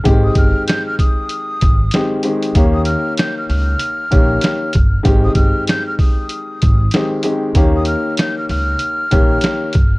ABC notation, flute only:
X:1
M:4/4
L:1/16
Q:"Swing 16ths" 1/4=96
K:Ab
V:1 name="Flute"
z e' f'2 g' f' e'6- e' z3 | z e' f'2 g' f' f'8- f'2 | z e' f'2 g' f' e'6- e' z3 | z e' f'2 g' f' f'8- f'2 |]